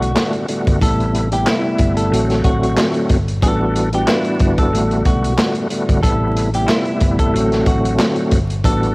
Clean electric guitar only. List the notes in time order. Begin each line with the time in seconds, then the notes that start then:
Already playing: F#4
0.82 A4
1.33 G4
1.47 E4
1.97 A4
2.45 F#4
3.43 A4
3.95 G4
4.07 E4
4.59 A4
5.06 F#4
6.03 A4
6.55 G4
6.66 E4
7.19 A4
7.67 F#4
8.65 A4